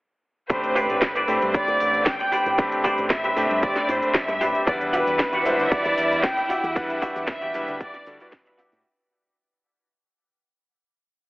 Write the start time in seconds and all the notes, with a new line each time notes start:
0.49 A1 A3 C4 D4 G4 C5 B5, kick, closed hi-hat
0.64 closed hi-hat
0.75 G4 B4 C5 D5, open hi-hat
0.90 A1, closed hi-hat
1.02 kick, snare, closed hi-hat
1.15 G4 B4 C5 D5, closed hi-hat
1.28 A2 A3 C4 D4 G4 C5 B5, open hi-hat
1.42 G2, closed hi-hat
1.54 D5, muted fingered electric bass stroke, kick, closed hi-hat
1.68 A1, closed hi-hat
1.80 A1, open hi-hat
1.94 closed hi-hat
2.06 G5, kick, snare, closed hi-hat
2.19 muted clean electric guitar stroke, closed hi-hat
2.32 G4 B4 C5 D5, muted fingered electric bass stroke, open hi-hat
2.46 A1, closed hi-hat
2.58 A3 C4 D4 G4 B5, kick, closed hi-hat
2.72 closed hi-hat
2.84 G4 B4 C5 D5, kick, open hi-hat
2.98 A1, closed hi-hat
3.10 E5, kick, snare, closed hi-hat
3.24 G4 B4 C5 E5, closed hi-hat
3.36 A2 A3 C4 D4 G4 B5, open hi-hat
3.50 G2, closed hi-hat
3.62 D5, kick, closed hi-hat
3.76 snare, closed hi-hat
3.88 A2 C5, open hi-hat
4.02 closed hi-hat
4.14 E5, kick, snare, closed hi-hat
4.28 G2, muted clean electric guitar stroke, closed hi-hat
4.41 A1 G4 B4 C5 D5, open hi-hat
4.55 closed hi-hat
4.67 E2 G3 D4 E4 B4 D5 E5 F#5, kick, closed hi-hat, cabasa
4.81 closed hi-hat
4.92 F#4 G4 B4 D5 E5, open hi-hat, cabasa
5.07 E2, closed hi-hat, cabasa
5.19 kick, snare, closed hi-hat, cabasa
5.33 F#4 G4 D5 F#5, closed hi-hat
5.44 E1 G3 D4 E4 B4 C5 E5, open hi-hat, cabasa
5.59 D2, closed hi-hat, cabasa
5.64 E5
5.70 D5, muted fingered electric bass stroke, kick, closed hi-hat, cabasa
5.85 E2, closed hi-hat
5.98 E2, open hi-hat, cabasa
6.12 closed hi-hat, cabasa
6.23 G5, kick, snare, closed hi-hat, cabasa
6.37 muted clean electric guitar stroke, closed hi-hat
6.49 F#4 G4 D5 E5, muted fingered electric bass stroke, open hi-hat, cabasa
6.63 E2, closed hi-hat, cabasa
6.75 G3 D4 E4 B4 F#5, kick, closed hi-hat, cabasa
6.90 closed hi-hat
7.02 F#4 G4 D5 E5, kick, open hi-hat, cabasa
7.16 E2, closed hi-hat, cabasa
7.28 E5, kick, snare, closed hi-hat, cabasa
7.41 F#4 G4 D5 G5, closed hi-hat
7.54 E1 G3 D4 E4 B4, open hi-hat, cabasa
7.68 D2, closed hi-hat, cabasa
7.80 D5, kick, closed hi-hat, cabasa
7.94 snare, closed hi-hat
8.06 D2 G3 D4 E4 F#4 A4, open hi-hat, cabasa
8.20 G3 D4 E4 F#4 B4 D5, closed hi-hat, cabasa
8.32 B4, kick, snare, closed hi-hat
8.45 muted clean electric guitar stroke, closed hi-hat
8.58 F#4 G4 D5 E5, muted fingered electric bass stroke, open hi-hat, cabasa
8.72 A2, closed hi-hat, cabasa